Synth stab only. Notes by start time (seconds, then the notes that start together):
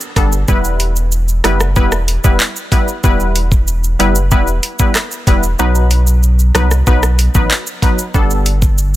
0.17 G3 B3 D4 A4
0.48 G3 B3 E4 B4
1.44 G3 B3 E4 B4
1.76 G3 B3 E4 B4
2.24 G3 B3 E4 B4
2.72 G3 B3 E4 B4
3.04 G3 B3 E4 B4
3.99 G3 B3 E4 B4
4.31 G3 B3 E4 B4
4.80 G3 B3 E4 B4
5.27 G3 B3 E4 B4
5.59 F#3 B3 D#4 B4
6.55 F#3 B3 D#4 B4
6.87 F#3 B3 D#4 B4
7.35 F#3 B3 D#4 B4
7.82 F#3 B3 D#4 B4
8.14 G3 B3 D4 A4